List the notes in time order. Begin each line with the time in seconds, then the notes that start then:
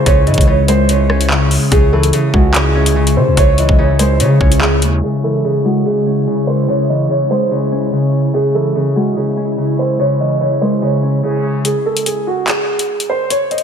Already playing: C#3 G#3 C#4 E4
0.06 C#2 C#3 C#5, kick, closed hi-hat
0.27 G#2 E3 D#5, closed hi-hat
0.34 C#2, kick, closed hi-hat
0.41 closed hi-hat
0.47 C#3 C#5
0.68 G#3 C5, closed hi-hat
0.89 C#3 C#5, closed hi-hat
1.10 C#4, cross-stick
1.21 closed hi-hat
1.30 C#3, clap
1.51 open hi-hat
1.72 C#2 C#3 G#3 E4 G#4, kick, closed hi-hat
1.92 E3 A4
2.03 closed hi-hat
2.13 C#3 G#4, closed hi-hat
2.34 C#2 G#3 F#4, kick
2.54 C#3 G#4, clap, closed hi-hat
2.75 C#4
2.86 closed hi-hat
2.96 C#3
3.07 closed hi-hat
3.17 C#3 C5
3.27 C#2
3.37 C#2 C#3 C#5, kick, closed hi-hat
3.58 E3 D#5, closed hi-hat
3.69 C#2, kick
3.78 C#3 C#5
3.99 G#3 C5, closed hi-hat
4.20 C#3 C#5, closed hi-hat
4.41 C#2 C#4, kick
4.52 closed hi-hat
4.61 C#3 G#4, clap
4.82 D#2, closed hi-hat
5.03 C#3 G#3 E4 G#4
5.24 E3 A4
5.44 C#3 G#4
5.65 G#3 F#4
5.85 C#3 G#4
6.06 C#4
6.27 C#3
6.47 C5
6.68 C#3 C#5
6.89 E3 D#5
7.09 C#3 C#5
7.30 G#3 C5
7.51 C#3 C#5
7.72 C#4
7.92 C#3
8.34 C#3 E4 G#4
8.54 E3 A4
8.75 C#3 G#4
8.96 G#3 F#4
9.16 C#3 G#4
9.37 C#4
9.58 C#3
9.79 C5
9.99 C#3 C#5
10.20 E3 D#5
10.41 C#3 C#5
10.61 G#3 C5
10.82 C#3 C#5
11.03 C#4
11.23 C#3 G#4
11.65 G#4, closed hi-hat
11.86 A4
11.97 closed hi-hat
12.06 G#4, closed hi-hat
12.27 F#4
12.47 G#4, clap, closed hi-hat
12.79 closed hi-hat
13.00 closed hi-hat
13.09 C5
13.30 C#5, closed hi-hat
13.51 D#5, closed hi-hat
13.58 closed hi-hat